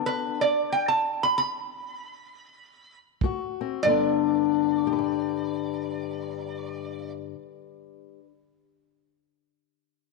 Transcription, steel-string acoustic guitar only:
Already playing: B3 D4
3.23 G#2 F#4
3.61 C4
3.84 G2 D3
3.88 B3 D4
4.87 G4
4.93 B4
4.99 D5

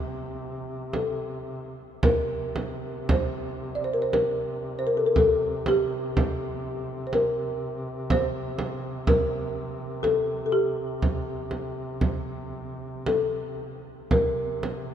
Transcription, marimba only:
Already playing: C5
0.95 A4
2.05 A#4
3.11 C5
3.75 D5
3.84 C5
3.94 A#4
4.02 C5
4.14 A#4
4.79 C5
4.87 A#4
4.97 A4
5.06 A#4
5.18 A4
5.68 G4
7.07 C5
7.14 A#4
8.12 C5
9.08 A#4
10.03 A4
10.46 A4
10.52 G4
13.07 A4
14.12 A#4

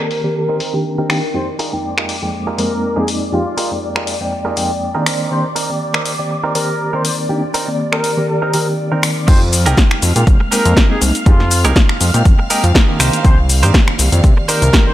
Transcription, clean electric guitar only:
0.00 C4 D#4 A#4
0.35 muted clean electric guitar stroke
0.49 C4 D#4 A#4
0.98 C4 D#4 A#4
1.23 muted clean electric guitar stroke
1.59 D#4 F4 G4 G#4 A#4
1.84 muted clean electric guitar stroke
1.97 D#4 F4 G4 G#4 A#4
2.33 muted clean electric guitar stroke
2.47 D#4 F4 G4 G#4 A#4
2.96 D#4 F4 G4 G#4 A#4
3.22 muted clean electric guitar stroke
3.57 D#4 F4 G4 G#4 A#4
3.82 muted clean electric guitar stroke
3.95 D#4 F4 G4 G#4 A#4
4.32 muted clean electric guitar stroke
4.45 D#4 F4 G4 G#4 A#4
4.95 D#4 F4 G4 G#4 A#4
5.06 C4 D#4 A#4
5.56 C4 D#4 A#4
5.80 muted clean electric guitar stroke
5.94 C4 D#4 A#4
6.30 muted clean electric guitar stroke
6.44 C4 D#4 A#4
6.93 C4 D#4 A#4
7.18 muted clean electric guitar stroke
7.54 C4 D#4 A#4
7.79 muted clean electric guitar stroke
7.92 C4 D#4 A#4
8.28 muted clean electric guitar stroke
8.42 C4 D#4 A#4
8.92 C4 D#4 A#4
9.17 muted clean electric guitar stroke
9.28 muted clean electric guitar stroke
9.41 muted clean electric guitar stroke
9.52 muted clean electric guitar stroke
9.66 D#4 G4 G#4 A#4
9.91 muted clean electric guitar stroke
10.27 muted clean electric guitar stroke
10.40 muted clean electric guitar stroke
10.51 D#4 G4 G#4 A#4
10.76 D#4 G4 G#4 A#4
11.26 muted clean electric guitar stroke
11.40 muted clean electric guitar stroke
11.51 muted clean electric guitar stroke
11.65 D#4 G4 G#4 A#4
11.89 muted clean electric guitar stroke
12.25 muted clean electric guitar stroke
12.39 muted clean electric guitar stroke
12.50 D#4 G4 G#4 A#4
12.75 D#4 G4 G#4 A#4
13.00 D#4 G4 A#4 C5
13.38 muted clean electric guitar stroke
13.49 muted clean electric guitar stroke
13.63 D#4 G4 A#4 C5
13.87 muted clean electric guitar stroke
14.24 muted clean electric guitar stroke
14.37 muted clean electric guitar stroke
14.48 D#4 G4 A#4 C5
14.73 D#4 G4 A#4 C5

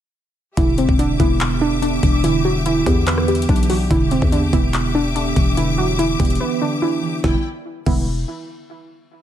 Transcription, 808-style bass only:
0.57 E1
0.89 E1
1.20 E1
2.03 E1
2.86 E2
3.49 B1
3.91 E1
4.22 E2
4.53 E1
5.36 E1
6.20 E1
7.24 E1
7.86 E1

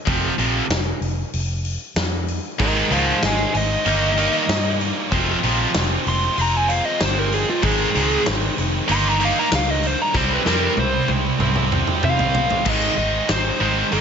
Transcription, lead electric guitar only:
2.60 A#4 D#5
2.93 C5 F5
3.24 D#5 G#5
3.57 D#5
6.09 C6
6.42 A#5
6.57 G#5
6.68 F5
6.85 D#5
7.03 C5
7.19 A#4
7.34 G#4
7.50 F4
7.64 G#4
8.92 C6
9.09 A#5
9.25 F5
9.39 A#5
9.55 F5
9.70 D#5
9.87 C5
10.02 A#5
10.17 C5
10.34 B4
10.47 A#4
10.80 C5
12.05 F5
12.69 D#5
12.97 D#5
13.30 C5
13.61 C5
13.93 A#4

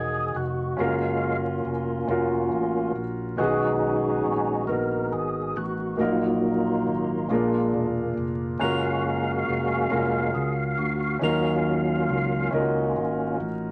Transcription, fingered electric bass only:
Already playing: E1
0.35 F1
0.79 F#1
1.65 F1
2.08 F1
2.51 A1
2.95 A#1
3.39 B1
4.26 A#1
4.69 A#1
5.13 G#1
5.56 A1
6.00 A#1
6.87 G#1
7.30 A#1
7.73 E1
8.17 F1
8.61 F#1
9.48 F1
9.92 F1
10.35 C#2
10.78 D2
11.22 D#2
12.09 C#2
12.52 C#2
12.96 G#1
13.40 A1

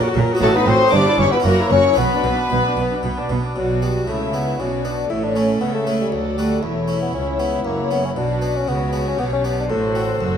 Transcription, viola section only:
0.04 F#4
0.16 A#4
0.30 F#4
0.42 F#4
0.54 D#4
0.67 F#4
0.80 D#4
0.94 G4
1.08 E4
1.20 G4
1.34 E4
1.47 F#4
1.60 E4
1.74 F#4
1.87 E4
2.00 B3
2.13 D4
2.25 B3
2.38 D4
2.52 B3
2.66 D4
2.79 B3
2.92 D4
3.05 B3
3.18 D4
3.31 B3
3.44 D4
3.57 F#4
4.08 E4
4.59 F#4
5.10 A4
6.12 A4
6.64 E4
8.18 F#4
8.68 F#4
9.19 G4
9.70 F#4
10.21 F#4

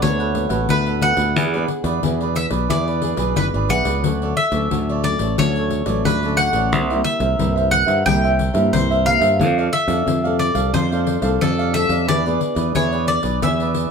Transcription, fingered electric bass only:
0.03 D2
0.50 A1
0.69 D2
1.17 D2
1.36 E2
1.84 E2
2.03 E2
2.51 B1
2.70 E2
3.17 B1
3.37 F#1
3.54 G#1
3.69 B1
3.86 C#2
4.04 D2
4.52 D2
4.71 D2
5.20 A1
5.38 D2
5.87 A1
6.05 D2
6.53 A1
6.72 C2
7.20 C2
7.39 C2
7.87 G2
8.06 C2
8.54 G2
8.73 C2
9.21 G2
9.40 F2
9.88 F2
10.07 F2
10.55 C2
10.73 F2
11.22 C2
11.42 F2
11.89 F2
12.08 E2
12.56 E2
12.76 E2
13.24 B1
13.43 E2

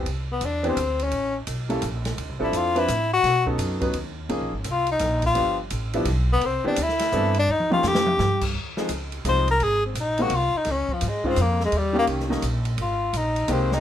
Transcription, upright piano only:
0.63 E3 B3 C4 D4 G4
1.69 G3 A#3 C#4 E4 A4
2.39 F3 C4 D4 E4 A4
2.75 F3 C4 D4 E4 B4
3.45 F#3 B3 C#4 D#4 A4
3.80 F#3 B3 C#4 D#4 B4
4.29 F3 A#3 C#4 D#4 G#4
5.34 F3 G3 B3 D4 G4
5.94 F3 G3 B3 D4 E4
6.64 E3 B3 C4 D4 G4
7.12 E3 B3 C4 D4 A4
7.70 D#3 G3 A#3 C#4 G4
8.77 F3 G#3 C4 D#4 G#4
9.25 F3 G#3 C4 D#4 F4
10.19 D#3 G#3 A#3 C4 F#4
11.24 D#3 G#3 C4 C#4 F4
11.93 D#3 G3 A#3 C#4 G4
12.29 D#3 G3 A#3 C#4 D#4
13.48 D#3 G#3 A#3 C4 G4

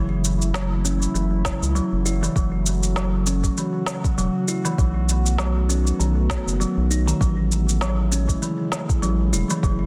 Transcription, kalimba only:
0.54 F#3
0.85 C#4
1.14 E3
1.75 F#3
2.06 E4
2.23 E3
2.36 F#3
2.97 F#3
3.27 C#4
3.58 E3
4.18 F#3
4.48 E4
4.65 E3
4.79 F#3
5.39 F#3
5.69 C#4
6.00 D#3
6.60 F#3
6.91 D#4
7.07 D#3
7.21 F#3
7.82 F#3
8.12 C#4
8.42 E3
9.02 F#3
9.33 E4
9.51 E3
9.64 F#3

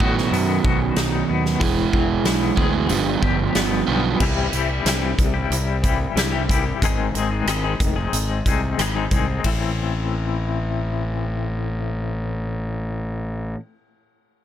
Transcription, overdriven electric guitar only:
0.00 B2 D#3 F#3 B3 F#4
1.60 E3 G#3 B3 E4
2.56 E3 G#3 B3 E4
2.88 G2 D3 F3 B3 F4
3.87 G2 D3 F3 B3 F4

